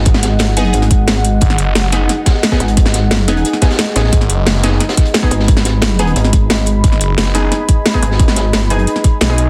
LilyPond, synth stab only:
\new Staff \with { instrumentName = "Synth stab" } { \time 4/4 \key gis \minor \tempo 4 = 177 <b dis' gis'>4. <b dis' gis'>4.~ <b dis' gis'>16 r8. | r4. <b dis' gis'>4.~ <b dis' gis'>16 <b dis' gis'>8.~ | <b dis' gis'>4. <b dis' gis'>4 <b dis' gis'>16 r8. <b dis' gis'>8 | r4. <b dis' gis'>4.~ <b dis' gis'>16 <b dis' gis'>8.~ |
<b dis' gis'>4. <b dis' gis'>4.~ <b dis' gis'>16 r8. | r4. <b dis' gis'>4.~ <b dis' gis'>16 <b dis' gis'>8.~ | <b dis' gis'>4. <b dis' gis'>4.~ <b dis' gis'>16 <b dis' gis'>8. | }